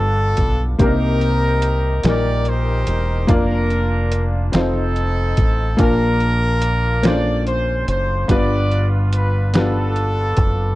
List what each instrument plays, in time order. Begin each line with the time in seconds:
Already playing: fingered electric bass G1, grand piano G2 B3 D4 F4 G4 B4, horn section D4 F4 A4
0.37 fingered electric bass B1, kick, closed hi-hat
0.78 fingered electric bass C2, grand piano C3 A#3 C4 D4 G4 A#4, horn section D#4 G4 A#4, kick, closed hi-hat
0.87 grand piano D#4
1.21 closed hi-hat
1.62 closed hi-hat
2.03 fingered electric bass A#1, grand piano A#2 G3 A#3 D#4 G4 A#4, horn section G4 A#4 D5, snare, closed hi-hat
2.45 horn section D#4, closed hi-hat
2.49 horn section G4 C5
2.87 fingered electric bass E1, closed hi-hat
3.27 fingered electric bass F1, grand piano A#3 D4 F4 A#4 D5, kick, closed hi-hat
3.32 horn section D4 F4 A#4
3.70 closed hi-hat
4.12 closed hi-hat
4.52 fingered electric bass F1, grand piano C4 D#4 F4 A4 C5, snare, closed hi-hat
4.56 horn section C4 D#4 A4
4.96 closed hi-hat
5.37 fingered electric bass A1, kick, closed hi-hat
5.77 fingered electric bass A#1, grand piano A#2 A#3 D4 F4 A#4 A5, kick, closed hi-hat
5.82 horn section D4 F4 A#4
6.20 closed hi-hat
6.62 closed hi-hat
7.03 grand piano A#3 C#4 F4 A4 C5, horn section D5, snare, closed hi-hat
7.10 grand piano D4
7.46 horn section C5, closed hi-hat
7.88 fingered electric bass F#1, horn section C5, closed hi-hat
8.28 fingered electric bass G1, grand piano G2 B3 D4 F4 G4 B4, horn section F4 B4 D5, kick, closed hi-hat
8.72 closed hi-hat
9.13 horn section B4, closed hi-hat
9.53 grand piano B3 D4 F4 G4 B4, horn section F4 A4, snare, closed hi-hat
9.58 horn section D4
9.96 closed hi-hat
10.37 fingered electric bass F#1, kick, closed hi-hat